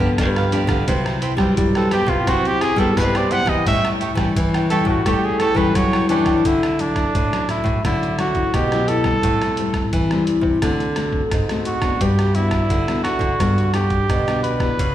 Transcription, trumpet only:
0, 0, Header, 1, 2, 480
1, 0, Start_track
1, 0, Key_signature, 2, "major"
1, 0, Tempo, 695249
1, 612, Time_signature, 4, 2, 24, 8
1, 10321, End_track
2, 0, Start_track
2, 0, Title_t, "Trumpet"
2, 0, Program_c, 0, 56
2, 1222, Note_on_c, 0, 69, 85
2, 1330, Note_on_c, 0, 67, 98
2, 1340, Note_off_c, 0, 69, 0
2, 1446, Note_on_c, 0, 65, 84
2, 1456, Note_off_c, 0, 67, 0
2, 1578, Note_on_c, 0, 66, 88
2, 1588, Note_off_c, 0, 65, 0
2, 1706, Note_on_c, 0, 67, 94
2, 1716, Note_off_c, 0, 66, 0
2, 1808, Note_on_c, 0, 68, 97
2, 1818, Note_off_c, 0, 67, 0
2, 1926, Note_on_c, 0, 69, 87
2, 1937, Note_off_c, 0, 68, 0
2, 2053, Note_on_c, 0, 71, 92
2, 2064, Note_off_c, 0, 69, 0
2, 2188, Note_on_c, 0, 74, 89
2, 2198, Note_off_c, 0, 71, 0
2, 2293, Note_on_c, 0, 78, 106
2, 2304, Note_off_c, 0, 74, 0
2, 2411, Note_on_c, 0, 75, 94
2, 2422, Note_off_c, 0, 78, 0
2, 2532, Note_off_c, 0, 75, 0
2, 2541, Note_on_c, 0, 76, 111
2, 2683, Note_off_c, 0, 76, 0
2, 3246, Note_on_c, 0, 69, 95
2, 3367, Note_on_c, 0, 66, 81
2, 3378, Note_off_c, 0, 69, 0
2, 3497, Note_on_c, 0, 67, 87
2, 3507, Note_off_c, 0, 66, 0
2, 3624, Note_on_c, 0, 68, 91
2, 3635, Note_off_c, 0, 67, 0
2, 3726, Note_on_c, 0, 69, 102
2, 3736, Note_off_c, 0, 68, 0
2, 3847, Note_on_c, 0, 71, 93
2, 3857, Note_off_c, 0, 69, 0
2, 3976, Note_on_c, 0, 73, 84
2, 3986, Note_off_c, 0, 71, 0
2, 4210, Note_off_c, 0, 73, 0
2, 4215, Note_on_c, 0, 62, 78
2, 4466, Note_on_c, 0, 64, 79
2, 4477, Note_off_c, 0, 62, 0
2, 4700, Note_on_c, 0, 62, 79
2, 4711, Note_off_c, 0, 64, 0
2, 5177, Note_off_c, 0, 62, 0
2, 5181, Note_on_c, 0, 64, 77
2, 5401, Note_off_c, 0, 64, 0
2, 5425, Note_on_c, 0, 64, 83
2, 5643, Note_off_c, 0, 64, 0
2, 5658, Note_on_c, 0, 66, 86
2, 5902, Note_on_c, 0, 67, 93
2, 5912, Note_off_c, 0, 66, 0
2, 6134, Note_on_c, 0, 69, 94
2, 6145, Note_off_c, 0, 67, 0
2, 6854, Note_off_c, 0, 69, 0
2, 8053, Note_on_c, 0, 66, 74
2, 8299, Note_on_c, 0, 67, 84
2, 8309, Note_off_c, 0, 66, 0
2, 8529, Note_on_c, 0, 64, 81
2, 8539, Note_off_c, 0, 67, 0
2, 8998, Note_off_c, 0, 64, 0
2, 9002, Note_on_c, 0, 66, 83
2, 9459, Note_off_c, 0, 66, 0
2, 9488, Note_on_c, 0, 67, 86
2, 9942, Note_off_c, 0, 67, 0
2, 9966, Note_on_c, 0, 71, 85
2, 10321, Note_off_c, 0, 71, 0
2, 10321, End_track
0, 0, End_of_file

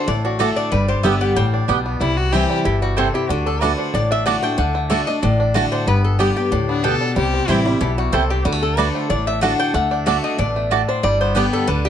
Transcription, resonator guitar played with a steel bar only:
0, 0, Header, 1, 2, 480
1, 0, Start_track
1, 0, Tempo, 322234
1, 1074, Time_signature, 4, 2, 24, 8
1, 17711, End_track
2, 0, Start_track
2, 0, Title_t, "Resonator guitar played with a steel bar"
2, 0, Program_c, 0, 25
2, 116, Note_on_c, 0, 74, 92
2, 361, Note_off_c, 0, 74, 0
2, 368, Note_on_c, 0, 66, 71
2, 587, Note_off_c, 0, 66, 0
2, 594, Note_on_c, 0, 69, 79
2, 839, Note_on_c, 0, 74, 102
2, 840, Note_off_c, 0, 69, 0
2, 1063, Note_off_c, 0, 74, 0
2, 1068, Note_on_c, 0, 71, 82
2, 1310, Note_off_c, 0, 71, 0
2, 1316, Note_on_c, 0, 72, 93
2, 1540, Note_on_c, 0, 76, 85
2, 1541, Note_off_c, 0, 72, 0
2, 1792, Note_off_c, 0, 76, 0
2, 1801, Note_on_c, 0, 78, 93
2, 2023, Note_off_c, 0, 78, 0
2, 2030, Note_on_c, 0, 79, 90
2, 2511, Note_off_c, 0, 79, 0
2, 3955, Note_on_c, 0, 67, 75
2, 4197, Note_off_c, 0, 67, 0
2, 4203, Note_on_c, 0, 66, 81
2, 4423, Note_off_c, 0, 66, 0
2, 4433, Note_on_c, 0, 69, 82
2, 4677, Note_off_c, 0, 69, 0
2, 4689, Note_on_c, 0, 67, 86
2, 4910, Note_off_c, 0, 67, 0
2, 4910, Note_on_c, 0, 66, 74
2, 5156, Note_off_c, 0, 66, 0
2, 5163, Note_on_c, 0, 69, 87
2, 5391, Note_off_c, 0, 69, 0
2, 5391, Note_on_c, 0, 71, 84
2, 5643, Note_off_c, 0, 71, 0
2, 5643, Note_on_c, 0, 72, 84
2, 5863, Note_off_c, 0, 72, 0
2, 5875, Note_on_c, 0, 74, 77
2, 6118, Note_off_c, 0, 74, 0
2, 6132, Note_on_c, 0, 76, 108
2, 6346, Note_off_c, 0, 76, 0
2, 6352, Note_on_c, 0, 78, 94
2, 6596, Note_off_c, 0, 78, 0
2, 6604, Note_on_c, 0, 79, 95
2, 6823, Note_off_c, 0, 79, 0
2, 6832, Note_on_c, 0, 78, 74
2, 7074, Note_off_c, 0, 78, 0
2, 7074, Note_on_c, 0, 79, 112
2, 7298, Note_off_c, 0, 79, 0
2, 7304, Note_on_c, 0, 76, 79
2, 7545, Note_off_c, 0, 76, 0
2, 7551, Note_on_c, 0, 75, 89
2, 7776, Note_off_c, 0, 75, 0
2, 7782, Note_on_c, 0, 74, 81
2, 8467, Note_off_c, 0, 74, 0
2, 8517, Note_on_c, 0, 72, 81
2, 8740, Note_off_c, 0, 72, 0
2, 8754, Note_on_c, 0, 71, 82
2, 8997, Note_off_c, 0, 71, 0
2, 9004, Note_on_c, 0, 69, 76
2, 9223, Note_off_c, 0, 69, 0
2, 9234, Note_on_c, 0, 67, 83
2, 9465, Note_off_c, 0, 67, 0
2, 9483, Note_on_c, 0, 67, 73
2, 10610, Note_off_c, 0, 67, 0
2, 11633, Note_on_c, 0, 67, 82
2, 11878, Note_off_c, 0, 67, 0
2, 11886, Note_on_c, 0, 66, 86
2, 12105, Note_off_c, 0, 66, 0
2, 12120, Note_on_c, 0, 69, 84
2, 12361, Note_off_c, 0, 69, 0
2, 12370, Note_on_c, 0, 67, 81
2, 12592, Note_off_c, 0, 67, 0
2, 12592, Note_on_c, 0, 66, 68
2, 12838, Note_off_c, 0, 66, 0
2, 12848, Note_on_c, 0, 69, 85
2, 13078, Note_off_c, 0, 69, 0
2, 13078, Note_on_c, 0, 71, 82
2, 13328, Note_off_c, 0, 71, 0
2, 13328, Note_on_c, 0, 72, 87
2, 13544, Note_off_c, 0, 72, 0
2, 13550, Note_on_c, 0, 74, 82
2, 13797, Note_off_c, 0, 74, 0
2, 13809, Note_on_c, 0, 76, 103
2, 14028, Note_off_c, 0, 76, 0
2, 14039, Note_on_c, 0, 78, 85
2, 14282, Note_off_c, 0, 78, 0
2, 14292, Note_on_c, 0, 79, 101
2, 14509, Note_off_c, 0, 79, 0
2, 14517, Note_on_c, 0, 78, 88
2, 14772, Note_off_c, 0, 78, 0
2, 14772, Note_on_c, 0, 79, 111
2, 14990, Note_off_c, 0, 79, 0
2, 14994, Note_on_c, 0, 76, 78
2, 15240, Note_off_c, 0, 76, 0
2, 15250, Note_on_c, 0, 75, 85
2, 15469, Note_off_c, 0, 75, 0
2, 15476, Note_on_c, 0, 74, 88
2, 16158, Note_off_c, 0, 74, 0
2, 16216, Note_on_c, 0, 72, 81
2, 16433, Note_off_c, 0, 72, 0
2, 16437, Note_on_c, 0, 74, 104
2, 16683, Note_off_c, 0, 74, 0
2, 16695, Note_on_c, 0, 72, 99
2, 16913, Note_off_c, 0, 72, 0
2, 16928, Note_on_c, 0, 71, 81
2, 17169, Note_off_c, 0, 71, 0
2, 17180, Note_on_c, 0, 69, 96
2, 17394, Note_on_c, 0, 71, 97
2, 17396, Note_off_c, 0, 69, 0
2, 17642, Note_off_c, 0, 71, 0
2, 17651, Note_on_c, 0, 67, 110
2, 17711, Note_off_c, 0, 67, 0
2, 17711, End_track
0, 0, End_of_file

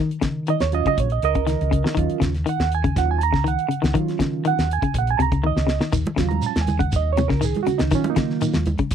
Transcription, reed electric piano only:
0, 0, Header, 1, 2, 480
1, 0, Start_track
1, 0, Key_signature, -6, "minor"
1, 0, Tempo, 496278
1, 1909, Time_signature, 4, 2, 24, 8
1, 8655, End_track
2, 0, Start_track
2, 0, Title_t, "Reed electric piano"
2, 0, Program_c, 0, 4
2, 483, Note_on_c, 0, 75, 86
2, 589, Note_on_c, 0, 73, 81
2, 592, Note_off_c, 0, 75, 0
2, 699, Note_off_c, 0, 73, 0
2, 699, Note_on_c, 0, 54, 53
2, 705, Note_on_c, 0, 61, 50
2, 707, Note_on_c, 0, 65, 62
2, 721, Note_on_c, 0, 75, 97
2, 831, Note_off_c, 0, 75, 0
2, 846, Note_on_c, 0, 75, 76
2, 948, Note_off_c, 0, 75, 0
2, 965, Note_on_c, 0, 73, 68
2, 1026, Note_off_c, 0, 54, 0
2, 1029, Note_off_c, 0, 61, 0
2, 1030, Note_off_c, 0, 65, 0
2, 1073, Note_off_c, 0, 73, 0
2, 1084, Note_on_c, 0, 75, 78
2, 1187, Note_off_c, 0, 75, 0
2, 1200, Note_on_c, 0, 70, 80
2, 1206, Note_on_c, 0, 75, 91
2, 1913, Note_on_c, 0, 54, 53
2, 1917, Note_on_c, 0, 65, 58
2, 1919, Note_on_c, 0, 61, 49
2, 2116, Note_off_c, 0, 70, 0
2, 2129, Note_off_c, 0, 75, 0
2, 2233, Note_off_c, 0, 54, 0
2, 2235, Note_off_c, 0, 65, 0
2, 2237, Note_off_c, 0, 61, 0
2, 2409, Note_on_c, 0, 78, 89
2, 2632, Note_off_c, 0, 78, 0
2, 2656, Note_on_c, 0, 80, 84
2, 2861, Note_on_c, 0, 54, 44
2, 2867, Note_on_c, 0, 61, 42
2, 2874, Note_on_c, 0, 65, 49
2, 2876, Note_off_c, 0, 80, 0
2, 2882, Note_on_c, 0, 78, 71
2, 2991, Note_off_c, 0, 78, 0
2, 3007, Note_on_c, 0, 80, 86
2, 3080, Note_off_c, 0, 54, 0
2, 3081, Note_on_c, 0, 81, 71
2, 3084, Note_off_c, 0, 61, 0
2, 3088, Note_off_c, 0, 65, 0
2, 3108, Note_off_c, 0, 80, 0
2, 3110, Note_off_c, 0, 81, 0
2, 3127, Note_on_c, 0, 82, 95
2, 3351, Note_off_c, 0, 82, 0
2, 3364, Note_on_c, 0, 78, 78
2, 3817, Note_on_c, 0, 54, 50
2, 3821, Note_off_c, 0, 78, 0
2, 3824, Note_on_c, 0, 61, 51
2, 3826, Note_on_c, 0, 65, 54
2, 4327, Note_on_c, 0, 78, 83
2, 4505, Note_off_c, 0, 54, 0
2, 4509, Note_off_c, 0, 61, 0
2, 4510, Note_off_c, 0, 65, 0
2, 4550, Note_off_c, 0, 78, 0
2, 4575, Note_on_c, 0, 80, 82
2, 4794, Note_off_c, 0, 80, 0
2, 4821, Note_on_c, 0, 78, 75
2, 4920, Note_off_c, 0, 78, 0
2, 4937, Note_on_c, 0, 80, 82
2, 5003, Note_on_c, 0, 81, 60
2, 5032, Note_off_c, 0, 81, 0
2, 5033, Note_off_c, 0, 80, 0
2, 5052, Note_on_c, 0, 82, 83
2, 5272, Note_off_c, 0, 82, 0
2, 5285, Note_on_c, 0, 75, 85
2, 5741, Note_off_c, 0, 75, 0
2, 5979, Note_on_c, 0, 54, 56
2, 5986, Note_on_c, 0, 61, 49
2, 5989, Note_on_c, 0, 65, 60
2, 6080, Note_on_c, 0, 82, 85
2, 6228, Note_off_c, 0, 82, 0
2, 6251, Note_on_c, 0, 81, 77
2, 6304, Note_off_c, 0, 54, 0
2, 6307, Note_off_c, 0, 61, 0
2, 6309, Note_off_c, 0, 65, 0
2, 6393, Note_off_c, 0, 81, 0
2, 6397, Note_on_c, 0, 80, 73
2, 6546, Note_off_c, 0, 80, 0
2, 6570, Note_on_c, 0, 78, 85
2, 6713, Note_off_c, 0, 78, 0
2, 6732, Note_on_c, 0, 75, 79
2, 6874, Note_off_c, 0, 75, 0
2, 6892, Note_on_c, 0, 73, 82
2, 7033, Note_off_c, 0, 73, 0
2, 7043, Note_on_c, 0, 70, 79
2, 7189, Note_off_c, 0, 70, 0
2, 7199, Note_on_c, 0, 68, 77
2, 7347, Note_off_c, 0, 68, 0
2, 7377, Note_on_c, 0, 66, 75
2, 7516, Note_off_c, 0, 66, 0
2, 7526, Note_on_c, 0, 63, 78
2, 7665, Note_on_c, 0, 54, 49
2, 7670, Note_off_c, 0, 63, 0
2, 7670, Note_on_c, 0, 61, 47
2, 7675, Note_on_c, 0, 65, 58
2, 7689, Note_off_c, 0, 61, 0
2, 7690, Note_on_c, 0, 61, 78
2, 7831, Note_on_c, 0, 58, 76
2, 7832, Note_off_c, 0, 61, 0
2, 7832, Note_on_c, 0, 63, 89
2, 8274, Note_off_c, 0, 58, 0
2, 8294, Note_off_c, 0, 63, 0
2, 8348, Note_off_c, 0, 54, 0
2, 8354, Note_off_c, 0, 65, 0
2, 8655, End_track
0, 0, End_of_file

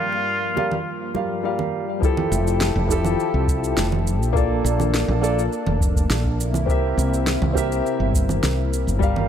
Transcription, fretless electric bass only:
0, 0, Header, 1, 2, 480
1, 0, Start_track
1, 0, Key_signature, -1, "major"
1, 0, Tempo, 582524
1, 1668, Time_signature, 4, 2, 24, 8
1, 7649, End_track
2, 0, Start_track
2, 0, Title_t, "Fretless electric bass"
2, 0, Program_c, 0, 35
2, 1908, Note_on_c, 0, 29, 97
2, 2233, Note_off_c, 0, 29, 0
2, 2270, Note_on_c, 0, 29, 102
2, 2591, Note_off_c, 0, 29, 0
2, 2752, Note_on_c, 0, 36, 91
2, 3071, Note_off_c, 0, 36, 0
2, 3106, Note_on_c, 0, 29, 95
2, 3469, Note_off_c, 0, 29, 0
2, 3469, Note_on_c, 0, 34, 86
2, 3790, Note_off_c, 0, 34, 0
2, 3827, Note_on_c, 0, 34, 99
2, 4152, Note_off_c, 0, 34, 0
2, 4188, Note_on_c, 0, 34, 106
2, 4510, Note_off_c, 0, 34, 0
2, 4671, Note_on_c, 0, 29, 92
2, 4991, Note_off_c, 0, 29, 0
2, 5028, Note_on_c, 0, 34, 91
2, 5393, Note_off_c, 0, 34, 0
2, 5393, Note_on_c, 0, 36, 87
2, 5712, Note_off_c, 0, 36, 0
2, 5747, Note_on_c, 0, 36, 97
2, 6072, Note_off_c, 0, 36, 0
2, 6111, Note_on_c, 0, 36, 103
2, 6431, Note_off_c, 0, 36, 0
2, 6591, Note_on_c, 0, 31, 94
2, 6911, Note_off_c, 0, 31, 0
2, 6949, Note_on_c, 0, 36, 89
2, 7310, Note_on_c, 0, 31, 87
2, 7322, Note_off_c, 0, 36, 0
2, 7630, Note_off_c, 0, 31, 0
2, 7649, End_track
0, 0, End_of_file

